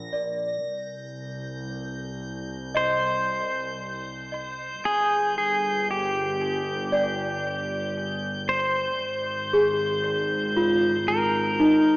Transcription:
0, 0, Header, 1, 5, 480
1, 0, Start_track
1, 0, Key_signature, -3, "minor"
1, 0, Tempo, 1047120
1, 303, Time_signature, 4, 2, 24, 8
1, 2701, Tempo, 1038062
1, 5510, End_track
2, 0, Start_track
2, 0, Title_t, "Synth texture"
2, 0, Program_c, 0, 99
2, 0, Note_on_c, 0, 94, 75
2, 306, Note_on_c, 0, 91, 78
2, 317, Note_off_c, 0, 94, 0
2, 5510, Note_off_c, 0, 91, 0
2, 5510, End_track
3, 0, Start_track
3, 0, Title_t, "Celesta"
3, 0, Program_c, 1, 8
3, 0, Control_c, 1, 64, 127
3, 58, Note_on_c, 1, 74, 41
3, 310, Control_c, 1, 64, 0
3, 401, Control_c, 1, 64, 127
3, 523, Note_off_c, 1, 74, 0
3, 1259, Note_on_c, 1, 75, 56
3, 2230, Control_c, 1, 64, 0
3, 2299, Control_c, 1, 64, 127
3, 2431, Note_off_c, 1, 75, 0
3, 3177, Note_on_c, 1, 74, 60
3, 4152, Control_c, 1, 64, 0
3, 4224, Control_c, 1, 64, 127
3, 4352, Note_off_c, 1, 74, 0
3, 4384, Note_on_c, 1, 68, 52
3, 4862, Note_on_c, 1, 65, 61
3, 5339, Note_on_c, 1, 63, 58
3, 5510, Note_off_c, 1, 63, 0
3, 5510, Note_off_c, 1, 65, 0
3, 5510, Note_off_c, 1, 68, 0
3, 5510, End_track
4, 0, Start_track
4, 0, Title_t, "Pedal steel guitar"
4, 0, Program_c, 2, 26
4, 1269, Note_on_c, 2, 72, 89
4, 2225, Note_on_c, 2, 68, 79
4, 2254, Note_off_c, 2, 72, 0
4, 2461, Note_off_c, 2, 68, 0
4, 2466, Note_on_c, 2, 68, 67
4, 2706, Note_off_c, 2, 68, 0
4, 2708, Note_on_c, 2, 67, 63
4, 3647, Note_off_c, 2, 67, 0
4, 3902, Note_on_c, 2, 72, 95
4, 5100, Note_on_c, 2, 70, 87
4, 5137, Note_off_c, 2, 72, 0
4, 5510, Note_off_c, 2, 70, 0
4, 5510, End_track
5, 0, Start_track
5, 0, Title_t, "Double bass section"
5, 0, Program_c, 3, 48
5, 0, Note_on_c, 3, 34, 73
5, 277, Note_off_c, 3, 34, 0
5, 302, Note_on_c, 3, 36, 67
5, 2198, Note_off_c, 3, 36, 0
5, 2220, Note_on_c, 3, 31, 75
5, 4120, Note_off_c, 3, 31, 0
5, 4141, Note_on_c, 3, 32, 82
5, 5510, Note_off_c, 3, 32, 0
5, 5510, End_track
0, 0, End_of_file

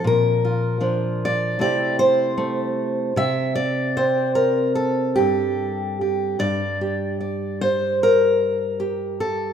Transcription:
0, 0, Header, 1, 2, 480
1, 0, Start_track
1, 0, Tempo, 784314
1, 24, Time_signature, 4, 2, 24, 8
1, 2424, Tempo, 815217
1, 3864, Tempo, 793651
1, 5753, End_track
2, 0, Start_track
2, 0, Title_t, "Steel-string acoustic guitar"
2, 0, Program_c, 0, 25
2, 0, Note_on_c, 0, 53, 65
2, 26, Note_on_c, 0, 46, 74
2, 44, Note_on_c, 0, 70, 94
2, 273, Note_on_c, 0, 65, 50
2, 486, Note_off_c, 0, 53, 0
2, 493, Note_on_c, 0, 53, 62
2, 497, Note_on_c, 0, 62, 48
2, 749, Note_off_c, 0, 70, 0
2, 765, Note_on_c, 0, 74, 95
2, 948, Note_off_c, 0, 62, 0
2, 952, Note_off_c, 0, 46, 0
2, 956, Note_off_c, 0, 65, 0
2, 973, Note_on_c, 0, 48, 71
2, 974, Note_off_c, 0, 53, 0
2, 976, Note_on_c, 0, 57, 49
2, 979, Note_off_c, 0, 74, 0
2, 984, Note_on_c, 0, 64, 47
2, 987, Note_on_c, 0, 67, 47
2, 987, Note_on_c, 0, 74, 105
2, 1216, Note_off_c, 0, 74, 0
2, 1218, Note_on_c, 0, 72, 111
2, 1446, Note_off_c, 0, 57, 0
2, 1453, Note_on_c, 0, 57, 67
2, 1908, Note_off_c, 0, 57, 0
2, 1915, Note_off_c, 0, 64, 0
2, 1928, Note_off_c, 0, 48, 0
2, 1936, Note_on_c, 0, 48, 78
2, 1939, Note_off_c, 0, 72, 0
2, 1942, Note_on_c, 0, 76, 108
2, 2173, Note_off_c, 0, 76, 0
2, 2175, Note_on_c, 0, 74, 101
2, 2426, Note_off_c, 0, 67, 0
2, 2427, Note_on_c, 0, 60, 60
2, 2429, Note_on_c, 0, 72, 88
2, 2652, Note_off_c, 0, 72, 0
2, 2654, Note_on_c, 0, 70, 84
2, 2889, Note_off_c, 0, 70, 0
2, 2891, Note_on_c, 0, 69, 89
2, 2898, Note_off_c, 0, 74, 0
2, 3127, Note_on_c, 0, 67, 78
2, 3140, Note_off_c, 0, 48, 0
2, 3145, Note_on_c, 0, 43, 57
2, 3625, Note_off_c, 0, 67, 0
2, 3632, Note_on_c, 0, 67, 41
2, 3839, Note_off_c, 0, 60, 0
2, 3848, Note_off_c, 0, 43, 0
2, 3855, Note_on_c, 0, 43, 66
2, 3856, Note_off_c, 0, 67, 0
2, 3858, Note_on_c, 0, 74, 105
2, 3861, Note_off_c, 0, 69, 0
2, 4110, Note_on_c, 0, 67, 47
2, 4340, Note_off_c, 0, 74, 0
2, 4347, Note_on_c, 0, 74, 43
2, 4594, Note_on_c, 0, 72, 98
2, 4832, Note_off_c, 0, 72, 0
2, 4847, Note_on_c, 0, 70, 92
2, 5308, Note_off_c, 0, 67, 0
2, 5310, Note_on_c, 0, 67, 50
2, 5553, Note_off_c, 0, 70, 0
2, 5556, Note_on_c, 0, 69, 77
2, 5753, Note_off_c, 0, 43, 0
2, 5753, Note_off_c, 0, 67, 0
2, 5753, Note_off_c, 0, 69, 0
2, 5753, Note_off_c, 0, 74, 0
2, 5753, End_track
0, 0, End_of_file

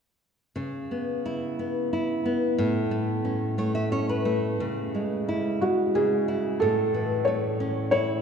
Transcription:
0, 0, Header, 1, 3, 480
1, 0, Start_track
1, 0, Key_signature, 4, "minor"
1, 0, Tempo, 691244
1, 388, Time_signature, 3, 2, 24, 8
1, 866, Tempo, 665927
1, 2786, Tempo, 685714
1, 3746, Tempo, 657174
1, 5890, End_track
2, 0, Start_track
2, 0, Title_t, "Felt piano"
2, 0, Program_c, 0, 0
2, 3988, Note_on_c, 0, 66, 65
2, 4234, Note_on_c, 0, 68, 69
2, 4238, Note_off_c, 0, 66, 0
2, 4707, Note_on_c, 0, 69, 79
2, 4730, Note_off_c, 0, 68, 0
2, 5181, Note_on_c, 0, 73, 76
2, 5208, Note_off_c, 0, 69, 0
2, 5656, Note_off_c, 0, 73, 0
2, 5667, Note_on_c, 0, 73, 83
2, 5890, Note_off_c, 0, 73, 0
2, 5890, End_track
3, 0, Start_track
3, 0, Title_t, "Nylon-string guitar"
3, 0, Program_c, 1, 24
3, 386, Note_on_c, 1, 49, 60
3, 633, Note_on_c, 1, 59, 35
3, 872, Note_on_c, 1, 64, 51
3, 1106, Note_off_c, 1, 59, 0
3, 1115, Note_on_c, 1, 59, 44
3, 1349, Note_off_c, 1, 64, 0
3, 1357, Note_on_c, 1, 64, 49
3, 1584, Note_off_c, 1, 59, 0
3, 1592, Note_on_c, 1, 59, 51
3, 1799, Note_off_c, 1, 49, 0
3, 1818, Note_off_c, 1, 64, 0
3, 1823, Note_off_c, 1, 59, 0
3, 1830, Note_on_c, 1, 45, 67
3, 2066, Note_on_c, 1, 57, 46
3, 2308, Note_on_c, 1, 61, 54
3, 2540, Note_off_c, 1, 57, 0
3, 2548, Note_on_c, 1, 57, 44
3, 2551, Note_on_c, 1, 73, 56
3, 2660, Note_off_c, 1, 73, 0
3, 2668, Note_on_c, 1, 76, 63
3, 2780, Note_off_c, 1, 76, 0
3, 2782, Note_off_c, 1, 61, 0
3, 2790, Note_on_c, 1, 61, 55
3, 2792, Note_on_c, 1, 73, 64
3, 2899, Note_off_c, 1, 73, 0
3, 2914, Note_on_c, 1, 71, 51
3, 3016, Note_off_c, 1, 57, 0
3, 3025, Note_on_c, 1, 57, 54
3, 3242, Note_off_c, 1, 45, 0
3, 3248, Note_off_c, 1, 71, 0
3, 3256, Note_off_c, 1, 61, 0
3, 3261, Note_off_c, 1, 57, 0
3, 3271, Note_on_c, 1, 49, 55
3, 3511, Note_on_c, 1, 56, 40
3, 3748, Note_on_c, 1, 64, 51
3, 3982, Note_off_c, 1, 56, 0
3, 3991, Note_on_c, 1, 56, 40
3, 4226, Note_off_c, 1, 49, 0
3, 4234, Note_on_c, 1, 49, 49
3, 4467, Note_off_c, 1, 64, 0
3, 4476, Note_on_c, 1, 64, 47
3, 4693, Note_off_c, 1, 56, 0
3, 4701, Note_off_c, 1, 49, 0
3, 4709, Note_off_c, 1, 64, 0
3, 4721, Note_on_c, 1, 45, 65
3, 4959, Note_on_c, 1, 52, 39
3, 5201, Note_on_c, 1, 57, 54
3, 5440, Note_on_c, 1, 61, 49
3, 5672, Note_on_c, 1, 64, 51
3, 5882, Note_off_c, 1, 52, 0
3, 5890, Note_off_c, 1, 45, 0
3, 5890, Note_off_c, 1, 57, 0
3, 5890, Note_off_c, 1, 61, 0
3, 5890, Note_off_c, 1, 64, 0
3, 5890, End_track
0, 0, End_of_file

